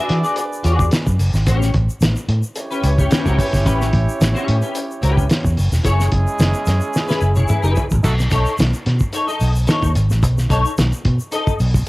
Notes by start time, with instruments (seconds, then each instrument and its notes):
Already playing: horn section D4 G#4 B4 D5, clean electric guitar F#4 G#4 E5
0.09 fingered electric bass E3, snare, closed hi-hat
0.23 clean electric guitar F#4 G#4 D5, shaker
0.36 closed hi-hat, shaker
0.53 shaker
0.63 fingered electric bass E2, clean electric guitar F#4 G#4 D5, closed hi-hat, shaker
0.79 kick, shaker
0.91 snare, closed hi-hat, shaker
1.06 fingered electric bass F#2, kick, shaker
1.19 fingered electric bass F#1, open hi-hat, shaker
1.34 fingered electric bass G#1, snare, shaker
1.46 fingered electric bass A1, clean electric guitar C#4 G4 C#5, kick, closed hi-hat, shaker
1.62 snare, shaker
1.74 fingered electric bass A1, kick, closed hi-hat
1.89 shaker
2.01 fingered electric bass A1, snare, closed hi-hat, shaker
2.16 shaker
2.29 fingered electric bass A2, closed hi-hat
2.43 shaker
2.56 horn section C#4 E4 G4 C#5, closed hi-hat, shaker
2.71 clean electric guitar C#4 G4 B4, shaker
2.84 fingered electric bass C#2, closed hi-hat, shaker
2.98 clean electric guitar C#4 G4 C#5, kick, shaker
3.10 clean electric guitar C#4 G4 B4, muted fingered electric bass stroke, snare, closed hi-hat, shaker
3.25 fingered electric bass C#2, clean electric guitar C#4 G4 B4, kick, shaker
3.39 kick, open hi-hat, shaker
3.53 fingered electric bass G1, kick, snare, shaker
3.65 fingered electric bass A1, clean electric guitar C#4 G4 B4, kick, closed hi-hat, shaker
3.81 snare, shaker
3.93 fingered electric bass A1, kick, closed hi-hat
4.09 shaker
4.21 fingered electric bass A1, snare, closed hi-hat, shaker
4.34 clean electric guitar C#4 G4 C#5, shaker
4.48 fingered electric bass A2, closed hi-hat
4.61 clean electric guitar C#4 G4 B4, shaker
4.75 closed hi-hat, shaker
4.91 shaker
5.02 fingered electric bass C#2, clean electric guitar C#4 G4 B4, closed hi-hat, shaker
5.17 kick, shaker
5.30 snare, closed hi-hat, shaker
5.45 fingered electric bass E2, kick, shaker
5.57 fingered electric bass F#1, open hi-hat, shaker
5.72 fingered electric bass E1, snare, shaker
5.84 fingered electric bass F#1, horn section G#3 C#4 E4 G#4, clean electric guitar E4 G#4 C#5, kick, closed hi-hat, shaker
6.00 snare, shaker
6.12 fingered electric bass F#1, kick, closed hi-hat
6.27 shaker
6.39 fingered electric bass F#1, snare, closed hi-hat, shaker
6.54 shaker
6.66 fingered electric bass F#2, snare, closed hi-hat, shaker
6.81 shaker
6.93 snare, shaker
7.08 clean electric guitar E4 G#4 B4, snare, shaker
7.21 fingered electric bass F#1, shaker
7.35 clean electric guitar E4 G#4 C#5, high tom, shaker
7.48 clean electric guitar E4 G#4 B4, muted fingered electric bass stroke, mid tom, shaker
7.63 fingered electric bass F#1, clean electric guitar E4 G#4 B4, shaker
7.76 floor tom, shaker
7.90 fingered electric bass A1, floor tom, shaker
8.03 fingered electric bass B1, horn section A3 D#4 F#4 A4, kick, crash, shaker
8.19 snare, shaker
8.30 fingered electric bass B1, clean electric guitar D#4 A4 C#5, kick, closed hi-hat, shaker
8.46 shaker
8.58 fingered electric bass B1, snare, closed hi-hat, shaker
8.73 shaker
8.86 fingered electric bass B2, snare, closed hi-hat
8.99 kick, shaker
9.13 clean electric guitar D#4 A4 C#5, closed hi-hat, shaker
9.27 clean electric guitar D#4 A4 D#5, shaker
9.40 fingered electric bass B1, open hi-hat, shaker
9.55 shaker
9.67 clean electric guitar D#4 A4 C#5, snare, closed hi-hat, shaker
9.83 fingered electric bass D#2, kick, shaker
9.95 fingered electric bass G#1, closed hi-hat, shaker
10.10 fingered electric bass A1, snare, shaker
10.23 fingered electric bass B1, kick, closed hi-hat, shaker
10.38 snare, shaker
10.49 fingered electric bass B1, clean electric guitar D#4 A4 C#5, kick, closed hi-hat, shaker
10.65 shaker
10.78 fingered electric bass B1, snare, closed hi-hat, shaker
10.93 shaker
11.05 fingered electric bass B2, kick, closed hi-hat
11.19 shaker
11.31 clean electric guitar D#4 A4 D#5, closed hi-hat, shaker
11.47 kick, shaker
11.59 fingered electric bass B1, open hi-hat, shaker
11.74 kick, shaker